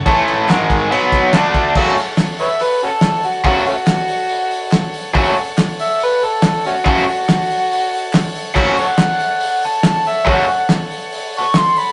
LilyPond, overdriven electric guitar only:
\new Staff \with { instrumentName = "Overdriven electric guitar" } { \clef bass \time 4/4 \key fis \minor \tempo 4 = 141 <a, e a>4 <gis, dis gis>4 <b, fis b>4 <d a d'>4 | <fis, cis fis a cis' fis'>8 r2. r8 | <fis, cis fis a cis' fis'>8 r2. r8 | <fis, cis fis a cis' fis'>8 r2. r8 |
<fis, cis fis a cis' fis'>8 r2. r8 | <fis, cis fis a cis' fis'>8 r2. r8 | <fis, cis fis a cis' fis'>8 r2. r8 | }